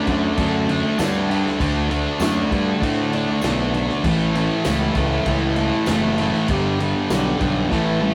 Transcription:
0.07 0.29 F#2 medium
0.07 0.36 D3 medium
0.07 0.38 A3 medium
0.07 0.39 D4 loud
0.07 kick medium
0.07 crash medium
0.37 0.81 F#2 loud
0.37 0.68 D3 medium
0.37 0.69 A3 loud
0.37 0.69 D4 loud
0.37 kick medium
0.37 crash medium
0.69 0.98 D3 medium
0.69 0.99 A3 loud
0.69 0.99 D4 loud
0.69 crash medium
0.99 1.42 G2 loud
0.99 1.28 D3 medium
0.99 1.30 A3 medium
0.99 1.29 D4 medium
0.99 snare loud
0.99 tambourine loud
0.99 crash medium
1.29 1.58 D3 medium
1.29 1.60 A3 loud
1.29 1.60 D4 medium
1.29 crash medium
1.46 snare soft
1.59 2.04 D2 medium
1.59 1.88 D3 loud
1.59 1.90 A3 loud
1.59 1.90 D4 loud
1.59 kick loud
1.59 crash medium
1.89 2.19 D3 medium
1.89 2.21 A3 medium
1.89 2.21 D4 medium
1.89 crash medium
2.20 2.42 F#2 medium
2.20 2.50 D3 medium
2.20 2.52 A3 loud
2.20 2.53 D4 loud
2.20 snare loud
2.20 tambourine loud
2.20 crash medium
2.51 2.73 G2 loud
2.51 2.81 D3 medium
2.51 2.82 A3 medium
2.51 2.83 D4 medium
2.51 kick medium
2.51 crash medium
2.82 3.25 A2 loud
2.82 3.12 D3 loud
2.82 3.13 A3 loud
2.82 3.14 D4 loud
2.82 kick medium
2.82 crash medium
3.13 3.41 D3 medium
3.13 3.42 A3 loud
3.13 3.44 D4 loud
3.13 crash medium
3.42 3.87 B1 loud
3.42 3.73 D3 medium
3.42 3.74 A3 medium
3.42 3.75 D4 loud
3.42 snare loud
3.42 tambourine loud
3.42 crash medium
3.74 4.03 D3 medium
3.74 4.03 A3 medium
3.74 4.04 D4 medium
3.74 crash medium
3.89 snare soft
4.04 4.48 A1 loud
4.04 4.34 A2 medium
4.04 4.35 E3 loud
4.04 4.35 A3 loud
4.04 kick loud
4.04 crash medium
4.35 4.64 A2 medium
4.35 4.65 E3 loud
4.35 4.65 A3 loud
4.35 crash medium
4.65 4.87 C#2 medium
4.65 4.95 A2 medium
4.65 4.96 E3 medium
4.65 4.97 A3 medium
4.65 snare loud
4.65 tambourine loud
4.65 crash loud
4.95 5.17 C#2 medium
4.95 5.26 A2 medium
4.95 5.27 E3 medium
4.95 5.28 A3 medium
4.95 kick medium
4.95 crash medium
5.26 5.70 C#2 loud
5.26 5.57 A2 medium
5.26 5.58 E3 loud
5.26 5.59 A3 loud
5.26 kick medium
5.26 crash medium
5.56 5.87 A2 loud
5.56 5.88 E3 loud
5.56 crash medium
5.60 5.89 A3 loud
5.86 6.31 F#1 loud
5.86 6.18 A2 medium
5.86 6.20 E3 loud
5.86 6.20 A3 loud
5.86 snare loud
5.86 tambourine loud
5.86 crash medium
6.18 6.47 A2 medium
6.18 6.48 E3 loud
6.18 6.49 A3 loud
6.18 crash medium
6.34 snare soft
6.48 6.92 G1 loud
6.48 6.78 G2 loud
6.48 6.80 D3 medium
6.48 6.81 G3 loud
6.48 kick loud
6.48 crash medium
6.79 7.09 G2 medium
6.79 7.10 D3 loud
6.79 7.12 G3 medium
6.79 crash medium
7.10 7.32 B1 medium
7.10 7.38 G2 medium
7.10 7.40 D3 medium
7.10 7.40 G3 medium
7.10 snare loud
7.10 tambourine loud
7.10 crash medium
7.39 7.62 B1 medium
7.39 7.69 G2 medium
7.39 7.70 D3 medium
7.39 7.70 G3 loud
7.39 kick loud
7.39 crash medium
7.71 8.14 A1 loud
7.71 8.00 A2 loud
7.71 8.01 E3 loud
7.71 8.02 A3 loud
7.71 kick medium
7.71 snare medium
8.01 8.14 A2 medium
8.01 8.14 E3 loud
8.01 8.14 A3 loud
8.01 high tom medium

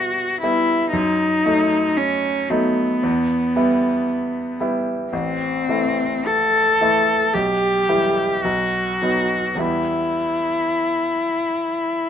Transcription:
0.00 0.95 B2 soft
0.00 0.43 G3 soft
0.00 0.43 B3 soft
0.00 0.44 E4 soft
0.00 0.41 F#4 medium
0.41 0.90 G3 soft
0.41 0.90 B3 soft
0.41 0.92 E4 medium
0.41 0.90 E4 soft
0.92 1.43 F#2 soft
0.92 1.99 D#4 medium
1.45 2.46 F#3 soft
1.45 2.46 A3 soft
1.45 2.46 D#4 soft
1.97 2.53 C#4 medium
2.50 2.99 F#3 soft
2.50 2.99 A3 soft
2.50 4.59 B3 medium
2.50 2.99 D#4 soft
3.03 3.54 E2 soft
3.56 4.55 G3 soft
3.56 4.55 B3 soft
3.56 4.56 E4 soft
4.60 5.09 G3 soft
4.60 5.09 B3 soft
4.60 5.09 E4 soft
5.13 5.67 A1 soft
5.13 6.28 C4 medium
5.69 6.77 E3 soft
5.69 6.77 A3 soft
5.69 6.78 E4 soft
6.27 7.35 A4 medium
6.81 7.30 E3 soft
6.81 7.31 A3 soft
6.81 7.31 E4 soft
7.34 7.87 B1 soft
7.34 8.45 G4 medium
7.89 8.40 E3 soft
7.89 8.40 G3 soft
7.89 8.40 E4 soft
8.43 8.99 B1 soft
8.43 9.61 F#4 soft
9.02 9.56 F#3 soft
9.02 9.56 B3 soft
9.02 9.56 D#4 soft
9.55 12.10 E2 soft
9.55 12.10 G3 soft
9.55 12.10 B3 soft
9.59 12.10 E4 soft
9.59 12.10 E4 medium

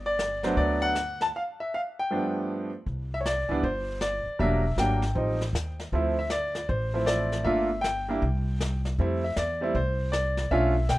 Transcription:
0.00 0.54 G1 medium
0.06 0.45 D5 loud
0.19 snare medium
0.19 hi-hat pedal medium
0.43 0.93 F#3 medium
0.43 0.94 A3 medium
0.43 0.93 B3 medium
0.43 0.94 D4 medium
0.43 0.58 C5 medium
0.43 snare soft
0.57 1.30 D2 medium
0.57 0.83 D5 medium
0.57 brush sweep soft
0.57 kick soft
0.82 1.21 F#5 loud
0.95 snare medium
0.95 hi-hat pedal medium
1.21 1.27 A5 medium
1.21 snare soft
1.36 1.41 F5 medium
1.60 1.73 E5 medium
1.74 1.80 F5 medium
1.99 2.71 G5 medium
2.11 2.69 G2 medium
2.11 2.69 F3 medium
2.11 2.69 A3 medium
2.11 2.69 B3 medium
2.11 2.69 D4 medium
2.86 3.46 C2 medium
2.86 brush sweep soft
2.86 kick soft
3.14 3.17 E5 medium
3.21 3.25 C#5 medium
3.25 3.65 D5 medium
3.25 snare medium
3.25 hi-hat pedal medium
3.49 3.62 C#2 medium
3.49 3.62 E3 medium
3.49 3.62 G3 medium
3.49 3.62 B3 medium
3.49 3.63 D4 medium
3.63 4.23 G1 medium
3.63 3.99 C5 medium
3.63 brush sweep medium
3.63 kick soft
4.01 4.41 D5 medium
4.01 snare medium
4.01 hi-hat pedal medium
4.26 muted upright bass stroke soft
4.39 4.75 E1 medium
4.39 4.62 F#3 medium
4.39 4.62 G3 medium
4.39 4.63 A#3 medium
4.39 4.63 D4 medium
4.39 4.76 E5 medium
4.39 brush sweep soft
4.39 kick soft
4.76 5.13 G#1 medium
4.76 5.00 F#3 medium
4.76 5.01 G3 medium
4.76 5.01 A#3 medium
4.76 5.01 D4 medium
4.76 5.76 G5 medium
4.76 snare medium
4.76 hi-hat pedal soft
5.02 snare soft
5.15 5.51 A1 medium
5.15 5.38 F3 medium
5.15 5.39 G3 medium
5.15 5.39 C4 medium
5.15 5.39 D#4 medium
5.15 brush sweep soft
5.15 kick soft
5.41 snare soft
5.53 5.89 D#2 medium
5.53 snare medium
5.53 hi-hat pedal medium
5.80 snare soft
5.92 6.65 D2 medium
5.92 6.15 F3 medium
5.92 6.16 A3 medium
5.92 6.16 C4 medium
5.92 6.16 E4 medium
5.92 brush sweep soft
5.92 kick soft
6.19 6.31 E5 medium
6.30 6.67 D5 medium
6.30 snare medium
6.30 hi-hat pedal medium
6.55 snare soft
6.69 7.42 A1 medium
6.69 7.05 C5 medium
6.69 brush sweep medium
6.69 kick soft
6.94 7.43 F3 medium
6.94 7.43 A3 medium
6.94 7.44 C4 medium
6.94 7.44 E4 medium
7.06 7.46 D5 medium
7.06 snare medium
7.06 hi-hat pedal medium
7.32 snare soft
7.45 8.18 G1 medium
7.45 7.68 A3 medium
7.45 7.68 A#3 medium
7.45 7.68 D4 medium
7.45 7.69 F4 medium
7.45 7.85 E5 medium
7.45 brush sweep soft
7.45 kick soft
7.81 8.80 G5 medium
7.81 snare medium
7.81 hi-hat pedal medium
8.08 8.21 G3 medium
8.08 8.21 A#3 medium
8.08 8.21 D4 medium
8.08 8.22 E4 medium
8.22 8.95 C2 medium
8.22 brush sweep soft
8.22 kick soft
8.60 snare medium
8.60 hi-hat pedal medium
8.85 snare soft
8.99 9.34 F2 medium
8.99 9.21 G3 medium
8.99 9.22 A3 medium
8.99 9.22 C4 medium
8.99 9.22 E4 medium
8.99 brush sweep medium
8.99 kick soft
9.24 9.38 E5 medium
9.36 9.72 E2 medium
9.36 9.77 D5 medium
9.36 snare medium
9.36 hi-hat pedal medium
9.61 9.73 G3 medium
9.61 9.74 A3 medium
9.61 9.74 C4 medium
9.61 9.75 E4 medium
9.75 10.47 C2 medium
9.75 10.11 C5 medium
9.75 brush sweep soft
9.75 kick soft
10.12 10.52 D5 medium
10.12 snare medium
10.12 hi-hat pedal medium
10.37 snare soft
10.51 10.87 B1 medium
10.51 10.74 A3 medium
10.51 10.74 C#4 medium
10.51 10.74 D4 medium
10.51 10.74 F4 medium
10.51 10.87 E5 medium
10.51 brush sweep soft
10.51 kick soft
10.89 10.99 B2 medium
10.89 10.99 G5 medium
10.89 snare medium
10.89 hi-hat pedal soft

